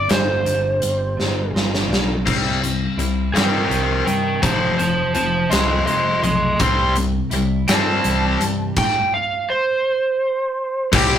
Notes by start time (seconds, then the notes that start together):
Already playing: D3 G3 C4 D4 D5
0.08 G1 G2 C5, snare, closed hi-hat
0.45 G1 D3, closed hi-hat
0.82 G1 G3, closed hi-hat
1.17 G1 D3, snare
1.53 G1 C4, snare
1.74 snare
1.89 B1 D4, snare
2.24 C2 C3 G3 C4, kick, crash
2.62 C3 G3, closed hi-hat
2.97 C2 C3 G3 E4, closed hi-hat
3.34 G2 C3 G3 C4 A#4 G5, snare, closed hi-hat
3.68 C2 C3 A#4 G5, closed hi-hat
4.06 G2 C3 G3 A#4 G5, closed hi-hat
4.42 F1 F2 C3 F3 C5 A5, kick, closed hi-hat
4.78 F2 C3 C5 A5, closed hi-hat
5.14 F1 F2 C3 F4 C5 A5, closed hi-hat
5.49 C2 F2 C3 F3 C4 D#5 C6, snare, closed hi-hat
5.86 F1 F3 D#5 C6, closed hi-hat
6.22 B1 F2 C3 A3 D#5 C6, closed hi-hat
6.59 C2 C3 G3 C4 C6, kick, closed hi-hat
6.95 C3 G3, closed hi-hat
7.31 C2 C3 G3 E4, closed hi-hat
7.67 G2 C3 G3 C4 A5, snare, closed hi-hat
8.04 C2 E3, closed hi-hat
8.39 G2 C3 G3, closed hi-hat
8.76 G5, kick, crash
9.14 F5
9.50 C5
10.92 C2 C3 G3 C4 E4 G4, kick, crash
10.96 G5